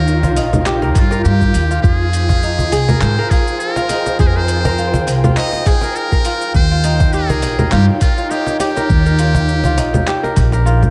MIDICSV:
0, 0, Header, 1, 7, 480
1, 0, Start_track
1, 0, Tempo, 588235
1, 1500, Time_signature, 4, 2, 24, 8
1, 8896, End_track
2, 0, Start_track
2, 0, Title_t, "Muted trumpet"
2, 0, Program_c, 0, 59
2, 0, Note_on_c, 0, 70, 104
2, 561, Note_off_c, 0, 70, 0
2, 780, Note_on_c, 0, 65, 85
2, 1003, Note_off_c, 0, 65, 0
2, 1011, Note_on_c, 0, 67, 92
2, 1463, Note_off_c, 0, 67, 0
2, 1489, Note_on_c, 0, 68, 108
2, 2456, Note_on_c, 0, 72, 113
2, 2469, Note_off_c, 0, 68, 0
2, 2695, Note_on_c, 0, 68, 97
2, 2707, Note_off_c, 0, 72, 0
2, 2936, Note_on_c, 0, 70, 108
2, 2948, Note_off_c, 0, 68, 0
2, 3418, Note_off_c, 0, 70, 0
2, 3425, Note_on_c, 0, 72, 93
2, 3484, Note_on_c, 0, 70, 81
2, 3496, Note_off_c, 0, 72, 0
2, 3561, Note_on_c, 0, 72, 109
2, 3573, Note_off_c, 0, 70, 0
2, 4169, Note_off_c, 0, 72, 0
2, 4392, Note_on_c, 0, 75, 121
2, 4630, Note_on_c, 0, 68, 103
2, 4642, Note_off_c, 0, 75, 0
2, 4864, Note_on_c, 0, 70, 118
2, 4876, Note_off_c, 0, 68, 0
2, 5342, Note_off_c, 0, 70, 0
2, 5349, Note_on_c, 0, 72, 121
2, 5823, Note_on_c, 0, 68, 102
2, 5835, Note_off_c, 0, 72, 0
2, 6301, Note_off_c, 0, 68, 0
2, 6305, Note_on_c, 0, 67, 102
2, 6412, Note_off_c, 0, 67, 0
2, 6544, Note_on_c, 0, 65, 91
2, 6777, Note_on_c, 0, 67, 99
2, 6789, Note_off_c, 0, 65, 0
2, 7012, Note_off_c, 0, 67, 0
2, 7017, Note_on_c, 0, 67, 98
2, 8666, Note_off_c, 0, 67, 0
2, 8896, End_track
3, 0, Start_track
3, 0, Title_t, "String section"
3, 0, Program_c, 1, 48
3, 0, Note_on_c, 1, 51, 86
3, 0, Note_on_c, 1, 63, 86
3, 0, Note_on_c, 1, 65, 85
3, 0, Note_on_c, 1, 73, 80
3, 0, Note_on_c, 1, 79, 70
3, 1496, Note_off_c, 1, 79, 0
3, 1502, Note_off_c, 1, 73, 0
3, 1503, Note_off_c, 1, 51, 0
3, 1513, Note_on_c, 1, 53, 67
3, 1707, Note_on_c, 1, 79, 74
3, 1825, Note_on_c, 1, 68, 78
3, 2281, Note_off_c, 1, 63, 0
3, 2807, Note_on_c, 1, 72, 92
3, 5344, Note_off_c, 1, 68, 0
3, 5344, Note_off_c, 1, 72, 0
3, 5346, Note_off_c, 1, 53, 0
3, 5354, Note_on_c, 1, 51, 72
3, 5639, Note_on_c, 1, 73, 73
3, 5647, Note_on_c, 1, 63, 85
3, 8896, Note_off_c, 1, 51, 0
3, 8896, Note_off_c, 1, 63, 0
3, 8896, Note_off_c, 1, 65, 0
3, 8896, Note_off_c, 1, 73, 0
3, 8896, Note_off_c, 1, 79, 0
3, 8896, End_track
4, 0, Start_track
4, 0, Title_t, "Kora"
4, 0, Program_c, 2, 46
4, 0, Note_on_c, 2, 63, 81
4, 0, Note_on_c, 2, 65, 75
4, 0, Note_on_c, 2, 67, 105
4, 0, Note_on_c, 2, 70, 94
4, 189, Note_off_c, 2, 65, 0
4, 192, Note_on_c, 2, 65, 70
4, 294, Note_off_c, 2, 63, 0
4, 298, Note_on_c, 2, 63, 74
4, 491, Note_off_c, 2, 67, 0
4, 536, Note_on_c, 2, 67, 107
4, 668, Note_off_c, 2, 70, 0
4, 672, Note_on_c, 2, 70, 97
4, 906, Note_off_c, 2, 70, 0
4, 909, Note_on_c, 2, 70, 97
4, 1017, Note_off_c, 2, 65, 0
4, 1020, Note_on_c, 2, 65, 78
4, 1390, Note_off_c, 2, 65, 0
4, 1393, Note_on_c, 2, 65, 77
4, 1496, Note_off_c, 2, 65, 0
4, 1499, Note_on_c, 2, 65, 85
4, 1622, Note_off_c, 2, 63, 0
4, 1688, Note_off_c, 2, 67, 0
4, 1870, Note_off_c, 2, 65, 0
4, 1873, Note_on_c, 2, 65, 69
4, 1948, Note_off_c, 2, 70, 0
4, 1984, Note_on_c, 2, 63, 80
4, 2221, Note_on_c, 2, 68, 97
4, 2358, Note_on_c, 2, 70, 94
4, 2597, Note_off_c, 2, 70, 0
4, 2600, Note_on_c, 2, 70, 105
4, 2703, Note_off_c, 2, 65, 0
4, 2706, Note_on_c, 2, 65, 70
4, 3074, Note_off_c, 2, 65, 0
4, 3077, Note_on_c, 2, 65, 80
4, 3182, Note_off_c, 2, 63, 0
4, 3185, Note_on_c, 2, 63, 74
4, 3335, Note_off_c, 2, 68, 0
4, 3421, Note_on_c, 2, 68, 105
4, 3551, Note_off_c, 2, 70, 0
4, 3554, Note_on_c, 2, 70, 102
4, 3793, Note_off_c, 2, 70, 0
4, 3796, Note_on_c, 2, 70, 98
4, 3900, Note_off_c, 2, 65, 0
4, 3903, Note_on_c, 2, 65, 78
4, 4272, Note_off_c, 2, 65, 0
4, 4276, Note_on_c, 2, 65, 75
4, 4375, Note_off_c, 2, 63, 0
4, 4379, Note_on_c, 2, 63, 86
4, 4534, Note_off_c, 2, 68, 0
4, 4619, Note_on_c, 2, 68, 96
4, 4752, Note_off_c, 2, 70, 0
4, 4755, Note_on_c, 2, 70, 103
4, 4993, Note_off_c, 2, 70, 0
4, 4996, Note_on_c, 2, 70, 102
4, 5099, Note_off_c, 2, 65, 0
4, 5102, Note_on_c, 2, 65, 76
4, 5475, Note_off_c, 2, 65, 0
4, 5478, Note_on_c, 2, 65, 70
4, 5579, Note_off_c, 2, 63, 0
4, 5583, Note_on_c, 2, 63, 75
4, 5732, Note_off_c, 2, 68, 0
4, 5821, Note_on_c, 2, 67, 100
4, 5951, Note_off_c, 2, 70, 0
4, 5954, Note_on_c, 2, 70, 102
4, 6191, Note_off_c, 2, 70, 0
4, 6194, Note_on_c, 2, 70, 99
4, 6297, Note_off_c, 2, 65, 0
4, 6301, Note_on_c, 2, 65, 89
4, 6670, Note_off_c, 2, 65, 0
4, 6673, Note_on_c, 2, 65, 71
4, 6775, Note_off_c, 2, 63, 0
4, 6779, Note_on_c, 2, 63, 86
4, 6973, Note_off_c, 2, 67, 0
4, 7019, Note_on_c, 2, 67, 107
4, 7150, Note_off_c, 2, 70, 0
4, 7153, Note_on_c, 2, 70, 110
4, 7389, Note_off_c, 2, 70, 0
4, 7392, Note_on_c, 2, 70, 104
4, 7496, Note_off_c, 2, 65, 0
4, 7499, Note_on_c, 2, 65, 75
4, 7870, Note_off_c, 2, 65, 0
4, 7874, Note_on_c, 2, 65, 79
4, 7971, Note_off_c, 2, 63, 0
4, 7975, Note_on_c, 2, 63, 71
4, 8171, Note_off_c, 2, 67, 0
4, 8218, Note_on_c, 2, 67, 105
4, 8347, Note_off_c, 2, 70, 0
4, 8350, Note_on_c, 2, 70, 97
4, 8589, Note_off_c, 2, 70, 0
4, 8593, Note_on_c, 2, 70, 99
4, 8692, Note_off_c, 2, 65, 0
4, 8696, Note_on_c, 2, 65, 86
4, 8896, Note_off_c, 2, 63, 0
4, 8896, Note_off_c, 2, 65, 0
4, 8896, Note_off_c, 2, 67, 0
4, 8896, Note_off_c, 2, 70, 0
4, 8896, End_track
5, 0, Start_track
5, 0, Title_t, "Upright bass"
5, 0, Program_c, 3, 32
5, 0, Note_on_c, 3, 39, 96
5, 300, Note_off_c, 3, 39, 0
5, 300, Note_on_c, 3, 34, 78
5, 778, Note_off_c, 3, 34, 0
5, 778, Note_on_c, 3, 43, 82
5, 981, Note_off_c, 3, 43, 0
5, 1021, Note_on_c, 3, 43, 91
5, 1222, Note_off_c, 3, 43, 0
5, 1261, Note_on_c, 3, 39, 81
5, 1462, Note_off_c, 3, 39, 0
5, 1500, Note_on_c, 3, 41, 95
5, 2220, Note_off_c, 3, 41, 0
5, 2220, Note_on_c, 3, 36, 83
5, 2421, Note_off_c, 3, 36, 0
5, 2460, Note_on_c, 3, 44, 85
5, 2570, Note_off_c, 3, 44, 0
5, 3421, Note_on_c, 3, 41, 101
5, 4142, Note_off_c, 3, 41, 0
5, 4142, Note_on_c, 3, 36, 84
5, 4343, Note_off_c, 3, 36, 0
5, 5341, Note_on_c, 3, 39, 93
5, 6063, Note_off_c, 3, 39, 0
5, 6063, Note_on_c, 3, 34, 83
5, 6263, Note_off_c, 3, 34, 0
5, 6300, Note_on_c, 3, 43, 83
5, 6410, Note_off_c, 3, 43, 0
5, 7259, Note_on_c, 3, 39, 95
5, 7978, Note_off_c, 3, 39, 0
5, 7978, Note_on_c, 3, 34, 83
5, 8181, Note_off_c, 3, 34, 0
5, 8458, Note_on_c, 3, 34, 96
5, 8896, Note_off_c, 3, 34, 0
5, 8896, End_track
6, 0, Start_track
6, 0, Title_t, "Cajon"
6, 189, Note_on_c, 9, 36, 88
6, 271, Note_off_c, 9, 36, 0
6, 297, Note_on_c, 9, 38, 77
6, 379, Note_off_c, 9, 38, 0
6, 670, Note_on_c, 9, 38, 57
6, 752, Note_off_c, 9, 38, 0
6, 905, Note_on_c, 9, 38, 65
6, 986, Note_off_c, 9, 38, 0
6, 1870, Note_on_c, 9, 36, 86
6, 1951, Note_off_c, 9, 36, 0
6, 2111, Note_on_c, 9, 36, 86
6, 2193, Note_off_c, 9, 36, 0
6, 2218, Note_on_c, 9, 38, 75
6, 2300, Note_off_c, 9, 38, 0
6, 3069, Note_on_c, 9, 38, 73
6, 3150, Note_off_c, 9, 38, 0
6, 3176, Note_on_c, 9, 38, 60
6, 3258, Note_off_c, 9, 38, 0
6, 3315, Note_on_c, 9, 38, 73
6, 3397, Note_off_c, 9, 38, 0
6, 3794, Note_on_c, 9, 36, 81
6, 3875, Note_off_c, 9, 36, 0
6, 4027, Note_on_c, 9, 36, 79
6, 4109, Note_off_c, 9, 36, 0
6, 4136, Note_on_c, 9, 38, 69
6, 4218, Note_off_c, 9, 38, 0
6, 4511, Note_on_c, 9, 38, 63
6, 4593, Note_off_c, 9, 38, 0
6, 4743, Note_on_c, 9, 38, 69
6, 4825, Note_off_c, 9, 38, 0
6, 5714, Note_on_c, 9, 36, 94
6, 5795, Note_off_c, 9, 36, 0
6, 5954, Note_on_c, 9, 36, 91
6, 6035, Note_off_c, 9, 36, 0
6, 6059, Note_on_c, 9, 38, 81
6, 6141, Note_off_c, 9, 38, 0
6, 6908, Note_on_c, 9, 38, 70
6, 6989, Note_off_c, 9, 38, 0
6, 7014, Note_on_c, 9, 38, 58
6, 7095, Note_off_c, 9, 38, 0
6, 7157, Note_on_c, 9, 38, 68
6, 7238, Note_off_c, 9, 38, 0
6, 7396, Note_on_c, 9, 38, 35
6, 7477, Note_off_c, 9, 38, 0
6, 7625, Note_on_c, 9, 36, 90
6, 7707, Note_off_c, 9, 36, 0
6, 7863, Note_on_c, 9, 36, 80
6, 7944, Note_off_c, 9, 36, 0
6, 7979, Note_on_c, 9, 38, 85
6, 8060, Note_off_c, 9, 38, 0
6, 8358, Note_on_c, 9, 38, 65
6, 8440, Note_off_c, 9, 38, 0
6, 8586, Note_on_c, 9, 38, 71
6, 8668, Note_off_c, 9, 38, 0
6, 8896, End_track
7, 0, Start_track
7, 0, Title_t, "Drums"
7, 62, Note_on_c, 9, 82, 48
7, 143, Note_off_c, 9, 82, 0
7, 195, Note_on_c, 9, 82, 31
7, 276, Note_off_c, 9, 82, 0
7, 298, Note_on_c, 9, 46, 85
7, 300, Note_on_c, 9, 82, 74
7, 379, Note_off_c, 9, 46, 0
7, 381, Note_off_c, 9, 82, 0
7, 433, Note_on_c, 9, 64, 70
7, 435, Note_on_c, 9, 82, 31
7, 514, Note_off_c, 9, 64, 0
7, 516, Note_off_c, 9, 82, 0
7, 539, Note_on_c, 9, 39, 78
7, 541, Note_on_c, 9, 82, 48
7, 621, Note_off_c, 9, 39, 0
7, 623, Note_off_c, 9, 82, 0
7, 778, Note_on_c, 9, 46, 84
7, 779, Note_on_c, 9, 36, 111
7, 780, Note_on_c, 9, 82, 78
7, 860, Note_off_c, 9, 46, 0
7, 861, Note_off_c, 9, 36, 0
7, 862, Note_off_c, 9, 82, 0
7, 915, Note_on_c, 9, 82, 38
7, 996, Note_off_c, 9, 82, 0
7, 1020, Note_on_c, 9, 82, 47
7, 1101, Note_off_c, 9, 82, 0
7, 1152, Note_on_c, 9, 82, 29
7, 1153, Note_on_c, 9, 36, 64
7, 1234, Note_off_c, 9, 36, 0
7, 1234, Note_off_c, 9, 82, 0
7, 1258, Note_on_c, 9, 46, 87
7, 1260, Note_on_c, 9, 82, 87
7, 1340, Note_off_c, 9, 46, 0
7, 1342, Note_off_c, 9, 82, 0
7, 1395, Note_on_c, 9, 82, 35
7, 1477, Note_off_c, 9, 82, 0
7, 1500, Note_on_c, 9, 36, 121
7, 1504, Note_on_c, 9, 82, 43
7, 1581, Note_off_c, 9, 36, 0
7, 1586, Note_off_c, 9, 82, 0
7, 1741, Note_on_c, 9, 46, 88
7, 1743, Note_on_c, 9, 82, 77
7, 1822, Note_off_c, 9, 46, 0
7, 1824, Note_off_c, 9, 82, 0
7, 1873, Note_on_c, 9, 36, 68
7, 1878, Note_on_c, 9, 82, 36
7, 1955, Note_off_c, 9, 36, 0
7, 1960, Note_off_c, 9, 82, 0
7, 1983, Note_on_c, 9, 82, 48
7, 2064, Note_off_c, 9, 82, 0
7, 2118, Note_on_c, 9, 82, 29
7, 2199, Note_off_c, 9, 82, 0
7, 2222, Note_on_c, 9, 46, 91
7, 2224, Note_on_c, 9, 82, 77
7, 2303, Note_off_c, 9, 46, 0
7, 2305, Note_off_c, 9, 82, 0
7, 2354, Note_on_c, 9, 64, 77
7, 2356, Note_on_c, 9, 82, 31
7, 2436, Note_off_c, 9, 64, 0
7, 2438, Note_off_c, 9, 82, 0
7, 2459, Note_on_c, 9, 39, 78
7, 2461, Note_on_c, 9, 82, 46
7, 2541, Note_off_c, 9, 39, 0
7, 2543, Note_off_c, 9, 82, 0
7, 2699, Note_on_c, 9, 36, 98
7, 2702, Note_on_c, 9, 46, 83
7, 2704, Note_on_c, 9, 82, 71
7, 2781, Note_off_c, 9, 36, 0
7, 2783, Note_off_c, 9, 46, 0
7, 2785, Note_off_c, 9, 82, 0
7, 2835, Note_on_c, 9, 82, 37
7, 2916, Note_off_c, 9, 82, 0
7, 2939, Note_on_c, 9, 82, 45
7, 3021, Note_off_c, 9, 82, 0
7, 3073, Note_on_c, 9, 82, 32
7, 3154, Note_off_c, 9, 82, 0
7, 3176, Note_on_c, 9, 46, 91
7, 3178, Note_on_c, 9, 82, 80
7, 3258, Note_off_c, 9, 46, 0
7, 3260, Note_off_c, 9, 82, 0
7, 3314, Note_on_c, 9, 82, 35
7, 3395, Note_off_c, 9, 82, 0
7, 3420, Note_on_c, 9, 36, 110
7, 3420, Note_on_c, 9, 82, 41
7, 3501, Note_off_c, 9, 36, 0
7, 3501, Note_off_c, 9, 82, 0
7, 3658, Note_on_c, 9, 46, 84
7, 3660, Note_on_c, 9, 82, 69
7, 3739, Note_off_c, 9, 46, 0
7, 3741, Note_off_c, 9, 82, 0
7, 3795, Note_on_c, 9, 82, 33
7, 3876, Note_off_c, 9, 82, 0
7, 3902, Note_on_c, 9, 82, 44
7, 3984, Note_off_c, 9, 82, 0
7, 4038, Note_on_c, 9, 82, 30
7, 4120, Note_off_c, 9, 82, 0
7, 4142, Note_on_c, 9, 46, 83
7, 4144, Note_on_c, 9, 82, 78
7, 4224, Note_off_c, 9, 46, 0
7, 4226, Note_off_c, 9, 82, 0
7, 4276, Note_on_c, 9, 64, 81
7, 4278, Note_on_c, 9, 82, 32
7, 4357, Note_off_c, 9, 64, 0
7, 4359, Note_off_c, 9, 82, 0
7, 4381, Note_on_c, 9, 39, 76
7, 4383, Note_on_c, 9, 82, 47
7, 4462, Note_off_c, 9, 39, 0
7, 4464, Note_off_c, 9, 82, 0
7, 4620, Note_on_c, 9, 36, 93
7, 4620, Note_on_c, 9, 46, 79
7, 4622, Note_on_c, 9, 82, 73
7, 4701, Note_off_c, 9, 36, 0
7, 4701, Note_off_c, 9, 46, 0
7, 4703, Note_off_c, 9, 82, 0
7, 4756, Note_on_c, 9, 82, 34
7, 4838, Note_off_c, 9, 82, 0
7, 4860, Note_on_c, 9, 82, 44
7, 4941, Note_off_c, 9, 82, 0
7, 4994, Note_on_c, 9, 36, 61
7, 4994, Note_on_c, 9, 82, 29
7, 5075, Note_off_c, 9, 82, 0
7, 5076, Note_off_c, 9, 36, 0
7, 5097, Note_on_c, 9, 46, 86
7, 5099, Note_on_c, 9, 82, 72
7, 5179, Note_off_c, 9, 46, 0
7, 5181, Note_off_c, 9, 82, 0
7, 5233, Note_on_c, 9, 82, 32
7, 5315, Note_off_c, 9, 82, 0
7, 5340, Note_on_c, 9, 36, 110
7, 5340, Note_on_c, 9, 82, 42
7, 5422, Note_off_c, 9, 36, 0
7, 5422, Note_off_c, 9, 82, 0
7, 5579, Note_on_c, 9, 46, 92
7, 5581, Note_on_c, 9, 82, 72
7, 5660, Note_off_c, 9, 46, 0
7, 5662, Note_off_c, 9, 82, 0
7, 5712, Note_on_c, 9, 82, 35
7, 5714, Note_on_c, 9, 36, 64
7, 5794, Note_off_c, 9, 82, 0
7, 5796, Note_off_c, 9, 36, 0
7, 5817, Note_on_c, 9, 82, 44
7, 5899, Note_off_c, 9, 82, 0
7, 5953, Note_on_c, 9, 82, 29
7, 6034, Note_off_c, 9, 82, 0
7, 6057, Note_on_c, 9, 46, 96
7, 6059, Note_on_c, 9, 82, 74
7, 6138, Note_off_c, 9, 46, 0
7, 6140, Note_off_c, 9, 82, 0
7, 6191, Note_on_c, 9, 64, 81
7, 6193, Note_on_c, 9, 82, 32
7, 6273, Note_off_c, 9, 64, 0
7, 6275, Note_off_c, 9, 82, 0
7, 6298, Note_on_c, 9, 39, 80
7, 6300, Note_on_c, 9, 82, 45
7, 6379, Note_off_c, 9, 39, 0
7, 6381, Note_off_c, 9, 82, 0
7, 6536, Note_on_c, 9, 46, 94
7, 6538, Note_on_c, 9, 82, 71
7, 6539, Note_on_c, 9, 36, 99
7, 6618, Note_off_c, 9, 46, 0
7, 6620, Note_off_c, 9, 36, 0
7, 6620, Note_off_c, 9, 82, 0
7, 6673, Note_on_c, 9, 82, 33
7, 6755, Note_off_c, 9, 82, 0
7, 6780, Note_on_c, 9, 82, 39
7, 6861, Note_off_c, 9, 82, 0
7, 6914, Note_on_c, 9, 82, 29
7, 6996, Note_off_c, 9, 82, 0
7, 7018, Note_on_c, 9, 46, 95
7, 7020, Note_on_c, 9, 82, 77
7, 7100, Note_off_c, 9, 46, 0
7, 7102, Note_off_c, 9, 82, 0
7, 7153, Note_on_c, 9, 82, 32
7, 7234, Note_off_c, 9, 82, 0
7, 7258, Note_on_c, 9, 36, 106
7, 7261, Note_on_c, 9, 82, 39
7, 7340, Note_off_c, 9, 36, 0
7, 7342, Note_off_c, 9, 82, 0
7, 7393, Note_on_c, 9, 82, 29
7, 7475, Note_off_c, 9, 82, 0
7, 7496, Note_on_c, 9, 46, 90
7, 7498, Note_on_c, 9, 82, 70
7, 7577, Note_off_c, 9, 46, 0
7, 7579, Note_off_c, 9, 82, 0
7, 7634, Note_on_c, 9, 82, 36
7, 7716, Note_off_c, 9, 82, 0
7, 7740, Note_on_c, 9, 82, 44
7, 7821, Note_off_c, 9, 82, 0
7, 7873, Note_on_c, 9, 82, 31
7, 7954, Note_off_c, 9, 82, 0
7, 7978, Note_on_c, 9, 46, 93
7, 7980, Note_on_c, 9, 82, 74
7, 8059, Note_off_c, 9, 46, 0
7, 8061, Note_off_c, 9, 82, 0
7, 8111, Note_on_c, 9, 64, 85
7, 8113, Note_on_c, 9, 82, 32
7, 8193, Note_off_c, 9, 64, 0
7, 8195, Note_off_c, 9, 82, 0
7, 8220, Note_on_c, 9, 39, 78
7, 8222, Note_on_c, 9, 82, 44
7, 8301, Note_off_c, 9, 39, 0
7, 8303, Note_off_c, 9, 82, 0
7, 8457, Note_on_c, 9, 46, 92
7, 8458, Note_on_c, 9, 36, 98
7, 8459, Note_on_c, 9, 82, 74
7, 8539, Note_off_c, 9, 46, 0
7, 8540, Note_off_c, 9, 36, 0
7, 8541, Note_off_c, 9, 82, 0
7, 8595, Note_on_c, 9, 82, 34
7, 8676, Note_off_c, 9, 82, 0
7, 8704, Note_on_c, 9, 82, 42
7, 8786, Note_off_c, 9, 82, 0
7, 8833, Note_on_c, 9, 36, 62
7, 8834, Note_on_c, 9, 64, 60
7, 8836, Note_on_c, 9, 82, 28
7, 8896, Note_off_c, 9, 36, 0
7, 8896, Note_off_c, 9, 64, 0
7, 8896, Note_off_c, 9, 82, 0
7, 8896, End_track
0, 0, End_of_file